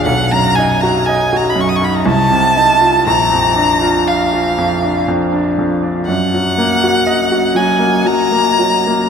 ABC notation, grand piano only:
X:1
M:3/4
L:1/16
Q:1/4=60
K:Ebm
V:1 name="Grand piano"
=B,,, ^F,, ^D ^F ^d F F,, D =C,, =C, E =F | B,,, F,, =D F f F F,, D F,, D F,, D | G,, G, B, G e G G, B, G, B, G, B, |]